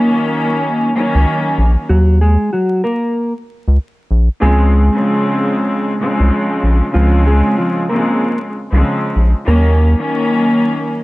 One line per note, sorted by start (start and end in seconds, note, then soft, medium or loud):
0.00 0.88 D#3 loud
0.00 0.88 F#3 medium
0.00 0.88 A#3 medium
0.00 1.43 A#3 medium
0.00 0.89 C#4 loud
0.00 1.42 A#4 loud
0.94 1.84 D#3 loud
0.94 1.84 F#3 medium
0.94 1.84 A#3 medium
0.94 1.84 C#4 loud
1.15 1.26 C#2 medium
1.58 1.76 A#1 medium
1.89 2.37 D#2 loud
1.89 2.18 F#3 medium
1.89 2.18 F#4 loud
2.21 2.50 G#3 medium
2.21 2.50 G#4 medium
2.53 2.82 F#3 medium
2.53 2.81 F#4 medium
2.84 3.33 A#3 medium
2.84 3.32 A#4 medium
3.68 3.78 C#2 medium
4.11 4.29 A#1 loud
4.42 4.90 C#2 loud
4.42 4.89 C#3 loud
4.42 4.89 F3 loud
4.42 6.48 G#3 medium
4.42 4.89 G#3 medium
4.42 4.90 C4 loud
4.42 6.47 G#4 loud
4.93 5.93 C#3 loud
4.93 5.94 F3 medium
4.93 5.94 G#3 medium
4.93 5.94 C4 loud
6.00 6.89 C#3 loud
6.00 6.89 F3 loud
6.00 6.90 G#3 medium
6.00 6.90 C4 loud
6.20 6.31 C2 loud
6.63 6.82 A#1 medium
6.93 7.42 C#2 loud
6.93 7.83 C#3 loud
6.93 7.83 F3 medium
6.93 7.23 F3 medium
6.93 7.83 G#3 loud
6.93 7.84 C4 loud
6.93 7.23 F4 loud
7.27 7.55 G#3 medium
7.27 7.55 G#4 medium
7.58 7.87 F3 medium
7.58 7.87 F4 medium
7.89 8.49 C#3 loud
7.89 8.50 F3 medium
7.89 8.50 G#3 medium
7.89 8.38 A#3 medium
7.89 8.50 C4 loud
7.89 8.38 A#4 medium
8.71 8.83 C2 medium
8.71 9.29 C#3 medium
8.71 9.29 F3 medium
8.71 9.29 G#3 medium
8.71 9.30 C4 loud
9.16 9.34 A#1 medium
9.46 9.95 D#2 loud
9.46 9.93 D#3 loud
9.46 9.94 F#3 medium
9.46 9.94 A#3 loud
9.46 11.04 A#3 medium
9.46 9.94 C#4 loud
9.46 11.04 A#4 loud
9.98 10.99 D#3 loud
9.98 10.99 F#3 medium
9.98 10.99 A#3 loud
9.98 10.99 C#4 loud